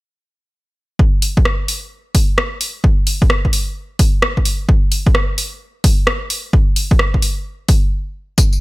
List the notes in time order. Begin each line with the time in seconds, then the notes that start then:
0.99 kick
1.22 open hi-hat
1.37 kick
1.45 cross-stick
1.68 open hi-hat
2.15 kick, open hi-hat
2.38 cross-stick
2.61 open hi-hat
2.84 kick
3.07 open hi-hat
3.22 kick
3.30 cross-stick
3.45 kick
3.53 open hi-hat
3.99 kick, open hi-hat
4.22 cross-stick
4.37 kick
4.45 open hi-hat
4.69 kick
4.92 open hi-hat
5.07 kick
5.15 cross-stick
5.38 open hi-hat
5.84 kick, open hi-hat
6.07 cross-stick
6.30 open hi-hat
6.53 kick
6.76 open hi-hat
6.91 kick
6.99 cross-stick
7.14 kick
7.22 open hi-hat
7.68 kick, open hi-hat
8.38 kick, closed hi-hat, tambourine
8.53 tambourine